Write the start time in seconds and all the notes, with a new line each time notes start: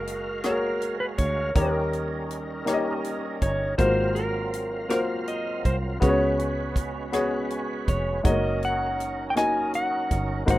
Already playing: F#1 G#3 A#3 F#4 G#4 A#4 F5
0.07 closed hi-hat
0.44 A#3 F#4 G#4 A#4 C#5, cross-stick, closed hi-hat
0.82 closed hi-hat
1.00 B4
1.18 D2 C#5, kick, closed hi-hat
1.55 D#2 D#3 G3 A#3 C#4 D#4 G4 A#4 C#5, kick, closed hi-hat
1.93 closed hi-hat
2.31 closed hi-hat
2.65 A#3 D#4 G4 C#5, cross-stick, closed hi-hat
2.74 D#5
3.04 closed hi-hat
3.42 G1 C#5, kick, closed hi-hat
3.78 G#1 G#2 F#3 A#3 B3 F4 F#4 A#4 C5 F5, kick, closed hi-hat
3.87 C4
4.15 A#4, closed hi-hat
4.54 closed hi-hat
4.89 A#3 F4 F#4 A#4 C5, cross-stick, closed hi-hat
5.28 D#5, closed hi-hat
5.65 C2 C5, kick, closed hi-hat
6.00 C#2 C#3 B3 C#4 F#4 G#4 B4 C#5, kick, closed hi-hat
6.04 G#3 F#4
6.09 C#5
6.39 closed hi-hat
6.76 kick, closed hi-hat
7.12 B3 F#4 G#4 C#5, cross-stick, closed hi-hat
7.50 closed hi-hat
7.88 F1 C#5, kick, closed hi-hat
8.23 F#1 F#3 G#3 C#4 D#4 F#4 A#4 C#5 D#5, kick, closed hi-hat
8.29 A#3
8.63 F#5, closed hi-hat
9.00 closed hi-hat
9.30 G5
9.35 A#3 D#4 F#4 D#5 G#5, cross-stick, closed hi-hat
9.74 F#5, closed hi-hat
10.11 G1, kick, closed hi-hat
10.46 G#1 G#2 F#3 A#3 C4 D#4 F#4 A#4 C5, kick, closed hi-hat
10.50 F#5